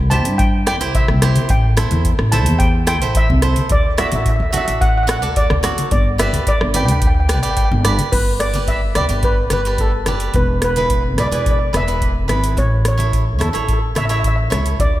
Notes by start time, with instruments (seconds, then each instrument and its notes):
0.00 upright bass C2
0.10 cavaquinho E4 G4 C5, steel pan A5, closed hi-hat, high conga, low conga
0.25 upright bass G2, closed hi-hat
0.38 steel pan G5, kick, closed hi-hat
0.66 cavaquinho E4 G4 D5, steel pan G5, cross-stick, closed hi-hat
0.81 upright bass C2, cavaquinho E4 G4 C5, closed hi-hat
0.95 steel pan E5, kick, closed hi-hat
1.08 upright bass C2, cross-stick, high conga
1.22 cavaquinho E4 G4 C5, cross-stick, closed hi-hat, low conga
1.36 closed hi-hat, high conga
1.49 upright bass A1, steel pan G5, kick, closed hi-hat
1.77 cavaquinho E4 A4 C5, cross-stick, closed hi-hat, low conga
1.91 upright bass E2, closed hi-hat, high conga
2.05 kick, closed hi-hat
2.19 upright bass A1, cross-stick
2.32 cavaquinho E4 A4 C5, steel pan A5, closed hi-hat, high conga, low conga
2.46 upright bass E2, closed hi-hat
2.59 steel pan G5, kick, closed hi-hat
2.87 cavaquinho E4 A4 C5, steel pan G5, cross-stick, closed hi-hat
3.02 upright bass A1, cavaquinho E4 A4 C5, closed hi-hat
3.15 steel pan E5, kick, closed hi-hat
3.30 upright bass C2, high conga
3.42 cavaquinho E4 A4 C5, cross-stick, closed hi-hat, low conga
3.56 closed hi-hat, high conga
3.69 upright bass D2, steel pan D5, kick, closed hi-hat
3.98 cavaquinho F#4 A4 D5, steel pan E5, cross-stick, closed hi-hat, low conga
4.08 steel pan E5, closed hi-hat
4.12 upright bass A1, steel pan E5, high conga
4.21 steel pan E5
4.26 steel pan E5, kick, closed hi-hat
4.36 steel pan E5
4.40 upright bass D2, steel pan E5
4.51 cavaquinho F#4 A4 D5, steel pan E5, closed hi-hat, high conga, low conga
4.58 steel pan E5
4.65 upright bass A1, steel pan E5, closed hi-hat
4.81 steel pan F#5, kick, closed hi-hat
4.89 steel pan F#5
4.98 steel pan F#5
5.03 cavaquinho F#4, steel pan F#5
5.07 cavaquinho A4 D5, steel pan F#5, cross-stick, closed hi-hat
5.19 cavaquinho A4 D5, steel pan F#5, closed hi-hat
5.23 upright bass D2, cavaquinho F#4
5.36 steel pan D5, kick, closed hi-hat
5.50 upright bass D2, cross-stick, high conga
5.63 cavaquinho F#4 A4 D5, cross-stick, closed hi-hat, low conga
5.78 closed hi-hat, high conga
5.91 upright bass G1, steel pan D5, kick, closed hi-hat
6.18 cavaquinho G4 B4 D5, steel pan E5, cross-stick, closed hi-hat, low conga
6.33 upright bass D2, closed hi-hat, high conga
6.47 steel pan D5, kick, closed hi-hat
6.61 upright bass G1, cross-stick
6.74 cavaquinho G4 B4 D5, steel pan G5, closed hi-hat, high conga, low conga
6.85 upright bass D2, steel pan G5, closed hi-hat
6.92 steel pan G5
7.00 steel pan G5, kick, closed hi-hat
7.07 steel pan G5
7.14 steel pan G5
7.20 steel pan G5
7.28 cavaquinho G4 B4 D5, steel pan G5, cross-stick, closed hi-hat
7.34 steel pan G5
7.43 upright bass G1, cavaquinho G4 B4 D5, steel pan G5, closed hi-hat
7.51 steel pan G5
7.57 steel pan G5, kick, closed hi-hat
7.65 steel pan G5
7.71 upright bass G1, high conga
7.84 cavaquinho G4 B4 D5, cross-stick, closed hi-hat, low conga
7.99 closed hi-hat, high conga
8.12 upright bass G1, steel pan B4, kick, closed hi-hat, crash, low conga
8.40 steel pan D5, cross-stick, closed hi-hat
8.54 cavaquinho G4 B4 D5, closed hi-hat, high conga
8.68 steel pan E5, kick, closed hi-hat
8.95 upright bass D2, cavaquinho G4 B4 D5, steel pan D5, cross-stick, closed hi-hat, high conga, low conga
9.09 upright bass G1, cavaquinho G4 B4 D5, closed hi-hat
9.23 steel pan B4, kick, closed hi-hat
9.50 upright bass G1, cavaquinho G4 B4 D5, steel pan B4, cross-stick, closed hi-hat, high conga
9.65 cavaquinho G4 B4 D5, closed hi-hat
9.78 steel pan A4, kick, closed hi-hat
10.06 upright bass F#1, cavaquinho G4 B4 D5, cross-stick, closed hi-hat, high conga, low conga
10.20 closed hi-hat
10.34 upright bass E1, steel pan B4, kick, closed hi-hat, low conga
10.62 steel pan B4, cross-stick, closed hi-hat
10.76 cavaquinho E4 G#4 B4, closed hi-hat, high conga
10.90 kick, closed hi-hat
11.18 upright bass B1, cavaquinho E4 G#4 B4, steel pan D5, cross-stick, closed hi-hat, high conga, low conga
11.27 steel pan D5
11.31 upright bass E1, cavaquinho E4 G#4 B4, steel pan D5, closed hi-hat
11.42 steel pan D5
11.46 kick, closed hi-hat
11.51 steel pan D5
11.59 steel pan D5
11.73 upright bass E1, cavaquinho E4 G#4 B4, steel pan E5, cross-stick, closed hi-hat, high conga
11.88 cavaquinho E4 G#4 B4, closed hi-hat
12.02 kick, closed hi-hat
12.28 upright bass G#1, cavaquinho E4 G#4 B4, cross-stick, closed hi-hat, high conga, low conga
12.44 closed hi-hat
12.57 upright bass A1, steel pan C#5, kick, closed hi-hat, low conga
12.85 steel pan C#5, cross-stick, closed hi-hat
12.98 cavaquinho E4 A4 C#5, closed hi-hat, high conga
13.13 kick, closed hi-hat
13.39 upright bass E2, cavaquinho E4 A4 C#5, steel pan A4, cross-stick, closed hi-hat, high conga, low conga
13.49 cavaquinho E4, steel pan A4
13.53 upright bass A1, cavaquinho A4 C#5, closed hi-hat
13.57 steel pan A4
13.64 steel pan A4
13.68 kick, closed hi-hat
13.73 steel pan A4
13.79 steel pan A4
13.95 upright bass A1, cavaquinho E4 A4 C#5, steel pan E5, cross-stick, closed hi-hat, high conga
14.05 cavaquinho A4, steel pan E5
14.09 cavaquinho E4 C#5, steel pan E5, closed hi-hat
14.20 steel pan E5
14.24 steel pan E5, kick, closed hi-hat
14.36 steel pan E5
14.50 upright bass C#2, cavaquinho E4 A4 C#5, cross-stick, closed hi-hat, high conga, low conga
14.66 closed hi-hat
14.79 upright bass D2, steel pan D5, kick, closed hi-hat, low conga